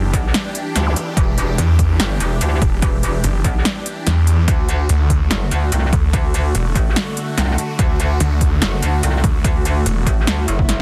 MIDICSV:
0, 0, Header, 1, 7, 480
1, 0, Start_track
1, 0, Tempo, 413793
1, 1356, Time_signature, 4, 2, 24, 8
1, 12550, End_track
2, 0, Start_track
2, 0, Title_t, "Supersaw synth"
2, 0, Program_c, 0, 81
2, 0, Note_on_c, 0, 52, 84
2, 0, Note_on_c, 0, 62, 78
2, 0, Note_on_c, 0, 67, 90
2, 5150, Note_off_c, 0, 52, 0
2, 5150, Note_off_c, 0, 62, 0
2, 5150, Note_off_c, 0, 67, 0
2, 5196, Note_on_c, 0, 57, 76
2, 5196, Note_on_c, 0, 66, 90
2, 5197, Note_on_c, 0, 50, 84
2, 12550, Note_off_c, 0, 50, 0
2, 12550, Note_off_c, 0, 57, 0
2, 12550, Note_off_c, 0, 66, 0
2, 12550, End_track
3, 0, Start_track
3, 0, Title_t, "Detuned saw bass"
3, 0, Program_c, 1, 39
3, 0, Note_on_c, 1, 30, 100
3, 139, Note_off_c, 1, 30, 0
3, 1836, Note_on_c, 1, 40, 97
3, 2298, Note_off_c, 1, 40, 0
3, 3036, Note_on_c, 1, 28, 96
3, 3258, Note_off_c, 1, 28, 0
3, 3755, Note_on_c, 1, 30, 99
3, 3978, Note_off_c, 1, 30, 0
3, 4716, Note_on_c, 1, 40, 102
3, 5179, Note_off_c, 1, 40, 0
3, 5676, Note_on_c, 1, 38, 105
3, 6138, Note_off_c, 1, 38, 0
3, 6875, Note_on_c, 1, 38, 100
3, 7098, Note_off_c, 1, 38, 0
3, 7596, Note_on_c, 1, 28, 97
3, 7818, Note_off_c, 1, 28, 0
3, 9516, Note_on_c, 1, 38, 101
3, 9978, Note_off_c, 1, 38, 0
3, 10716, Note_on_c, 1, 38, 94
3, 10938, Note_off_c, 1, 38, 0
3, 11435, Note_on_c, 1, 28, 104
3, 11658, Note_off_c, 1, 28, 0
3, 12550, End_track
4, 0, Start_track
4, 0, Title_t, "Wobble bass"
4, 0, Program_c, 2, 39
4, 156, Note_on_c, 2, 35, 99
4, 378, Note_off_c, 2, 35, 0
4, 875, Note_on_c, 2, 38, 95
4, 1098, Note_off_c, 2, 38, 0
4, 1355, Note_on_c, 2, 28, 94
4, 1818, Note_off_c, 2, 28, 0
4, 2315, Note_on_c, 2, 31, 96
4, 2538, Note_off_c, 2, 31, 0
4, 2556, Note_on_c, 2, 28, 97
4, 2778, Note_off_c, 2, 28, 0
4, 2796, Note_on_c, 2, 38, 94
4, 3018, Note_off_c, 2, 38, 0
4, 3275, Note_on_c, 2, 28, 93
4, 3738, Note_off_c, 2, 28, 0
4, 3995, Note_on_c, 2, 35, 102
4, 4218, Note_off_c, 2, 35, 0
4, 5195, Note_on_c, 2, 38, 88
4, 5658, Note_off_c, 2, 38, 0
4, 6156, Note_on_c, 2, 30, 97
4, 6378, Note_off_c, 2, 30, 0
4, 6396, Note_on_c, 2, 38, 97
4, 6618, Note_off_c, 2, 38, 0
4, 6636, Note_on_c, 2, 36, 97
4, 6858, Note_off_c, 2, 36, 0
4, 7115, Note_on_c, 2, 38, 91
4, 7578, Note_off_c, 2, 38, 0
4, 7836, Note_on_c, 2, 33, 100
4, 8058, Note_off_c, 2, 33, 0
4, 8555, Note_on_c, 2, 36, 96
4, 8778, Note_off_c, 2, 36, 0
4, 9035, Note_on_c, 2, 38, 96
4, 9498, Note_off_c, 2, 38, 0
4, 9996, Note_on_c, 2, 30, 95
4, 10218, Note_off_c, 2, 30, 0
4, 10236, Note_on_c, 2, 38, 102
4, 10458, Note_off_c, 2, 38, 0
4, 10477, Note_on_c, 2, 36, 96
4, 10699, Note_off_c, 2, 36, 0
4, 10955, Note_on_c, 2, 38, 98
4, 11418, Note_off_c, 2, 38, 0
4, 11675, Note_on_c, 2, 33, 104
4, 11898, Note_off_c, 2, 33, 0
4, 11916, Note_on_c, 2, 38, 92
4, 12139, Note_off_c, 2, 38, 0
4, 12157, Note_on_c, 2, 30, 96
4, 12550, Note_off_c, 2, 30, 0
4, 12550, End_track
5, 0, Start_track
5, 0, Title_t, "Swell"
5, 0, Program_c, 3, 103
5, 11916, Note_on_c, 3, 60, 59
5, 12550, Note_off_c, 3, 60, 0
5, 12550, End_track
6, 0, Start_track
6, 0, Title_t, "Zap"
6, 0, Program_c, 4, 103
6, 1006, Note_on_c, 4, 60, 64
6, 1116, Note_off_c, 4, 60, 0
6, 12550, End_track
7, 0, Start_track
7, 0, Title_t, "Drums"
7, 156, Note_on_c, 9, 36, 64
7, 158, Note_on_c, 9, 42, 60
7, 272, Note_off_c, 9, 36, 0
7, 274, Note_off_c, 9, 42, 0
7, 397, Note_on_c, 9, 38, 124
7, 397, Note_on_c, 9, 42, 84
7, 513, Note_off_c, 9, 38, 0
7, 513, Note_off_c, 9, 42, 0
7, 637, Note_on_c, 9, 42, 58
7, 753, Note_off_c, 9, 42, 0
7, 877, Note_on_c, 9, 38, 60
7, 877, Note_on_c, 9, 42, 83
7, 993, Note_off_c, 9, 38, 0
7, 993, Note_off_c, 9, 42, 0
7, 1117, Note_on_c, 9, 42, 58
7, 1233, Note_off_c, 9, 42, 0
7, 1356, Note_on_c, 9, 36, 127
7, 1358, Note_on_c, 9, 42, 82
7, 1472, Note_off_c, 9, 36, 0
7, 1474, Note_off_c, 9, 42, 0
7, 1597, Note_on_c, 9, 42, 55
7, 1713, Note_off_c, 9, 42, 0
7, 1837, Note_on_c, 9, 42, 82
7, 1953, Note_off_c, 9, 42, 0
7, 2075, Note_on_c, 9, 36, 65
7, 2077, Note_on_c, 9, 42, 61
7, 2191, Note_off_c, 9, 36, 0
7, 2193, Note_off_c, 9, 42, 0
7, 2316, Note_on_c, 9, 38, 127
7, 2316, Note_on_c, 9, 42, 82
7, 2432, Note_off_c, 9, 38, 0
7, 2432, Note_off_c, 9, 42, 0
7, 2556, Note_on_c, 9, 42, 57
7, 2672, Note_off_c, 9, 42, 0
7, 2795, Note_on_c, 9, 42, 76
7, 2911, Note_off_c, 9, 42, 0
7, 3035, Note_on_c, 9, 36, 112
7, 3036, Note_on_c, 9, 42, 59
7, 3151, Note_off_c, 9, 36, 0
7, 3152, Note_off_c, 9, 42, 0
7, 3275, Note_on_c, 9, 36, 127
7, 3275, Note_on_c, 9, 42, 81
7, 3391, Note_off_c, 9, 36, 0
7, 3391, Note_off_c, 9, 42, 0
7, 3516, Note_on_c, 9, 42, 55
7, 3632, Note_off_c, 9, 42, 0
7, 3756, Note_on_c, 9, 42, 74
7, 3872, Note_off_c, 9, 42, 0
7, 3995, Note_on_c, 9, 36, 68
7, 3996, Note_on_c, 9, 42, 55
7, 4111, Note_off_c, 9, 36, 0
7, 4112, Note_off_c, 9, 42, 0
7, 4236, Note_on_c, 9, 38, 127
7, 4236, Note_on_c, 9, 42, 82
7, 4352, Note_off_c, 9, 38, 0
7, 4352, Note_off_c, 9, 42, 0
7, 4476, Note_on_c, 9, 42, 56
7, 4592, Note_off_c, 9, 42, 0
7, 4716, Note_on_c, 9, 38, 59
7, 4716, Note_on_c, 9, 42, 77
7, 4832, Note_off_c, 9, 38, 0
7, 4832, Note_off_c, 9, 42, 0
7, 4955, Note_on_c, 9, 42, 55
7, 5071, Note_off_c, 9, 42, 0
7, 5195, Note_on_c, 9, 36, 123
7, 5196, Note_on_c, 9, 42, 77
7, 5311, Note_off_c, 9, 36, 0
7, 5312, Note_off_c, 9, 42, 0
7, 5435, Note_on_c, 9, 42, 55
7, 5551, Note_off_c, 9, 42, 0
7, 5676, Note_on_c, 9, 42, 76
7, 5792, Note_off_c, 9, 42, 0
7, 5915, Note_on_c, 9, 36, 60
7, 5916, Note_on_c, 9, 42, 56
7, 6031, Note_off_c, 9, 36, 0
7, 6032, Note_off_c, 9, 42, 0
7, 6155, Note_on_c, 9, 38, 119
7, 6155, Note_on_c, 9, 42, 78
7, 6271, Note_off_c, 9, 38, 0
7, 6271, Note_off_c, 9, 42, 0
7, 6396, Note_on_c, 9, 42, 50
7, 6512, Note_off_c, 9, 42, 0
7, 6636, Note_on_c, 9, 42, 77
7, 6752, Note_off_c, 9, 42, 0
7, 6875, Note_on_c, 9, 36, 108
7, 6876, Note_on_c, 9, 42, 55
7, 6991, Note_off_c, 9, 36, 0
7, 6992, Note_off_c, 9, 42, 0
7, 7115, Note_on_c, 9, 36, 120
7, 7116, Note_on_c, 9, 42, 72
7, 7231, Note_off_c, 9, 36, 0
7, 7232, Note_off_c, 9, 42, 0
7, 7356, Note_on_c, 9, 42, 52
7, 7472, Note_off_c, 9, 42, 0
7, 7595, Note_on_c, 9, 42, 77
7, 7711, Note_off_c, 9, 42, 0
7, 7835, Note_on_c, 9, 36, 60
7, 7835, Note_on_c, 9, 42, 53
7, 7951, Note_off_c, 9, 36, 0
7, 7951, Note_off_c, 9, 42, 0
7, 8076, Note_on_c, 9, 38, 113
7, 8076, Note_on_c, 9, 42, 77
7, 8192, Note_off_c, 9, 38, 0
7, 8192, Note_off_c, 9, 42, 0
7, 8317, Note_on_c, 9, 42, 52
7, 8433, Note_off_c, 9, 42, 0
7, 8556, Note_on_c, 9, 38, 60
7, 8556, Note_on_c, 9, 42, 74
7, 8672, Note_off_c, 9, 38, 0
7, 8672, Note_off_c, 9, 42, 0
7, 8796, Note_on_c, 9, 42, 52
7, 8912, Note_off_c, 9, 42, 0
7, 9036, Note_on_c, 9, 36, 113
7, 9036, Note_on_c, 9, 42, 78
7, 9152, Note_off_c, 9, 36, 0
7, 9152, Note_off_c, 9, 42, 0
7, 9276, Note_on_c, 9, 42, 55
7, 9392, Note_off_c, 9, 42, 0
7, 9516, Note_on_c, 9, 42, 74
7, 9632, Note_off_c, 9, 42, 0
7, 9756, Note_on_c, 9, 36, 61
7, 9756, Note_on_c, 9, 42, 57
7, 9872, Note_off_c, 9, 36, 0
7, 9872, Note_off_c, 9, 42, 0
7, 9996, Note_on_c, 9, 38, 119
7, 9996, Note_on_c, 9, 42, 82
7, 10112, Note_off_c, 9, 38, 0
7, 10112, Note_off_c, 9, 42, 0
7, 10237, Note_on_c, 9, 42, 55
7, 10353, Note_off_c, 9, 42, 0
7, 10476, Note_on_c, 9, 42, 77
7, 10592, Note_off_c, 9, 42, 0
7, 10716, Note_on_c, 9, 36, 97
7, 10717, Note_on_c, 9, 42, 56
7, 10832, Note_off_c, 9, 36, 0
7, 10833, Note_off_c, 9, 42, 0
7, 10955, Note_on_c, 9, 36, 114
7, 10957, Note_on_c, 9, 42, 80
7, 11071, Note_off_c, 9, 36, 0
7, 11073, Note_off_c, 9, 42, 0
7, 11197, Note_on_c, 9, 42, 58
7, 11313, Note_off_c, 9, 42, 0
7, 11438, Note_on_c, 9, 42, 79
7, 11554, Note_off_c, 9, 42, 0
7, 11675, Note_on_c, 9, 36, 61
7, 11677, Note_on_c, 9, 42, 57
7, 11791, Note_off_c, 9, 36, 0
7, 11793, Note_off_c, 9, 42, 0
7, 11917, Note_on_c, 9, 38, 122
7, 11917, Note_on_c, 9, 42, 84
7, 12033, Note_off_c, 9, 38, 0
7, 12033, Note_off_c, 9, 42, 0
7, 12156, Note_on_c, 9, 42, 57
7, 12272, Note_off_c, 9, 42, 0
7, 12285, Note_on_c, 9, 36, 62
7, 12397, Note_on_c, 9, 38, 61
7, 12397, Note_on_c, 9, 42, 82
7, 12401, Note_off_c, 9, 36, 0
7, 12513, Note_off_c, 9, 38, 0
7, 12513, Note_off_c, 9, 42, 0
7, 12550, End_track
0, 0, End_of_file